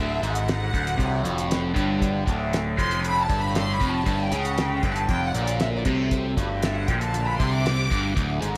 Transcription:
Already playing: D1 D2 A2 D3 A3
0.00 E5
0.22 G#1 G#2, closed hi-hat
0.29 D2 F#5
0.35 closed hi-hat
0.48 snare, closed hi-hat
0.73 D1 D2, kick, closed hi-hat
0.87 closed hi-hat
0.93 A2
0.97 C2 C3, kick, closed hi-hat
1.24 F1 F2, closed hi-hat
1.38 closed hi-hat
1.51 snare, closed hi-hat
1.55 D3
1.75 G1 G2, kick, snare, closed hi-hat
2.02 kick, closed hi-hat
2.14 D3
2.26 D1 D2, kick, closed hi-hat
2.53 snare, closed hi-hat
2.78 F1 F2 C6, kick, closed hi-hat
2.91 closed hi-hat
3.04 B5, closed hi-hat
3.22 A5
3.28 G1 G2, kick, closed hi-hat
3.38 A2 B5
3.55 C6, snare, closed hi-hat
3.75 B5
3.80 F1 F2, kick, closed hi-hat
3.91 A5
4.06 G1 G2, kick, closed hi-hat
4.25 G5
4.32 C#2 C#3, closed hi-hat
4.43 F#5, closed hi-hat
4.58 D3 G5, snare, closed hi-hat
4.75 G5
4.83 G1 G2, kick, closed hi-hat
4.92 A5, closed hi-hat
5.09 F1 F2 G5, kick, closed hi-hat
5.27 D2 F#5
5.34 A#1 A#2, closed hi-hat
5.44 D5, closed hi-hat
5.60 E5, snare, closed hi-hat
5.76 D5
5.85 C2 C3 A3, kick, closed hi-hat
6.11 kick, closed hi-hat
6.37 G1 G2, kick, closed hi-hat
6.51 D3
6.62 E5, snare, closed hi-hat
6.75 F#5
6.86 A#1 A#2 G5, kick, closed hi-hat
7.00 A5, closed hi-hat
7.13 D3, closed hi-hat
7.26 B5
7.38 C2 C3 C6, kick, closed hi-hat
7.51 D6
7.66 snare, closed hi-hat
7.72 D2
7.90 G1 G2, kick, closed hi-hat
8.15 D1 D2, kick, closed hi-hat
8.42 G#1 G#2, closed hi-hat

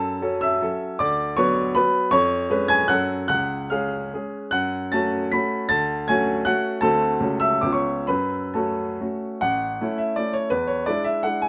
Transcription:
Already playing: F#2 A4 A5
0.22 F#3 C#4 A4
0.41 E5 E6
0.62 F#3 C#4 A4
0.99 D2 D5 D6
1.37 F#3 B3 B4 C#5 C#6
1.75 F#3 B3 B4 B5
2.11 F2 C#5 C#6
2.50 G#3 C#4 B4
2.68 G#5 G#6
2.88 F#2 F#3 C#4 A4 F#5 F#6
3.28 C#2 F#5 F#6
3.70 G#3 C#4 G#4 F5 F6
4.14 G#3 C#4 G#4
4.51 F#2 F#5 F#6
4.92 A3 C#4 F#4 A5 A6
5.32 A3 C#4 F#4 B5 B6
5.69 D2 A5 A6
6.08 A3 C#4 F#4 G#5 G#6
6.45 A3 C#4 F#4 F#5 F#6
6.81 D2 A3 C4 F#4 A4 A5
7.20 C#2 A3 C#4 F#4
7.40 E5 E6
7.61 C#2 B3 C#4 F4 D6
7.72 C#5 C#6
8.07 F#2 B4 B5
8.54 A3 C#4 F#4 A4 A5
9.01 A3 C#4 F#4
9.41 A1 F#5
9.81 A3 C#4 E4
9.98 E5
10.16 A3 C#4 E4 D5
10.33 C#5
10.50 E2 B4
10.67 C#5
10.86 G#3 D4 E4 D5
11.04 E5
11.23 G#3 D4 E4 F#5
11.42 G#5

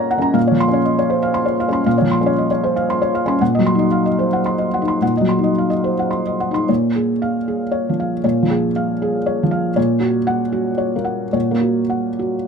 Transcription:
Already playing: A#2 A#3 C#4 A#4 C#5 D#5 F#5 A#5 C#6 C#7
0.11 F#5
0.18 C#4
0.22 A#5
0.34 A#2 F5
0.47 C#5
0.52 F3
0.60 C6
0.68 C#4
0.73 C#5
0.85 D#5
0.99 C#5
1.10 C5
1.23 F5
1.34 C6
1.46 C#5
1.60 F5
1.69 C#4
1.73 C6
1.86 A#2 F5
1.98 F3 C#5
2.11 C6
2.21 C#4
2.26 C#5
2.38 D#5
2.51 C#5
2.64 C5
2.76 F5
2.90 C6
3.02 C#5
3.15 F5
3.26 C#4 C6
3.41 A#2 F#5
3.55 F#3 D#5
3.66 C6
3.75 D#4 D#5
3.92 F5
4.06 D#5
4.19 C5
4.33 F#5
4.46 C6
4.58 D#5
4.74 F#5
4.82 D#4
4.88 C6
5.02 A#2 F#5
5.17 F#3 D#5
5.29 C6
5.39 D#4
5.44 D#5
5.58 F5
5.70 D#5
5.84 C5
5.99 F#5
6.11 C6
6.27 D#5
6.40 F#5
6.51 D#4 C6
6.69 A#2 C#5
6.96 G#4
7.22 F5
7.48 G#4
7.71 C#5
7.89 F3
8.00 F5
8.24 A#2 C#5
8.43 F3
8.50 G#4
8.76 F5
9.02 G#4
9.26 C#5
9.43 F3
9.51 F5
9.76 A#2 C#5
10.00 F#4
10.27 F#5
10.52 F#4
10.78 C#5
10.96 A#3
11.05 F#5
11.33 A#2 C#5
11.51 A#3
11.61 F#4
11.90 F#5
12.19 F#4

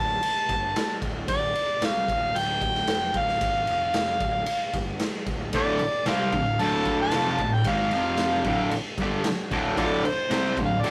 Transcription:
Already playing: D1 A5
0.23 muted picked electric bass stroke, ride
0.49 G1, kick, ride
0.76 muted picked electric bass stroke, snare, ride
1.01 D1, kick, ride
1.28 D1 D5, kick, ride
1.55 muted picked electric bass stroke, ride
1.81 C2 F5, snare, ride
2.08 D1, kick, ride
2.34 D1 G5, ride
2.61 kick, ride
2.75 snare
2.87 F1, snare, ride
3.14 D1, kick, ride
3.18 F5
3.28 snare
3.41 G#1, kick, ride
3.67 F1, ride
3.94 snare, ride
4.20 D1, kick, ride
4.46 muted picked electric bass stroke, ride
4.73 G1, kick, ride
5.00 muted picked electric bass stroke, snare, ride
5.26 D1, kick, ride
5.53 D1 D2 A2 D3 D5, kick, ride
5.79 muted picked electric bass stroke, muted distorted electric guitar stroke, ride
6.06 C2 C3 G3 C4 F5, snare, ride
6.32 D1 D2 A2, kick, ride
6.59 D1 D2 A2 D3 A5, ride
6.85 kick, ride
7.01 A5
7.11 F1 F2 C3 F3, snare, ride
7.38 D1 D2 A2, kick, ride
7.54 G5
7.64 G#1 G#2 D#3 G#3, kick, ride
7.69 F5
7.91 F1 F2 C3 F3, ride
8.17 snare, ride
8.44 D1 D2 A2 D3, kick, ride
8.71 muted picked electric bass stroke, muted distorted electric guitar stroke, ride
8.97 G1 G2 D3 G3, kick, ride
9.24 muted picked electric bass stroke, muted distorted electric guitar stroke, snare, ride
9.51 D1 D2 A2 D3, kick, ride
9.77 D1 D2 A2 D3 F4 A4 D5, kick, ride
10.04 C5, muted picked electric bass stroke, muted distorted electric guitar stroke, ride
10.30 C2 C3 G3 C4, snare, ride
10.57 D1 D2 A2, kick, ride
10.65 F5
10.81 D1 D2 A2 D5, ride
10.85 D3

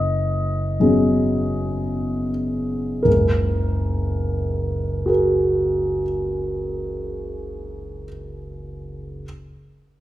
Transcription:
Already playing: F#1 D#5
0.80 F#3 B3 C#4 G#4
3.03 F#1 C#2 A#4
5.06 F#4 G#4 A#4

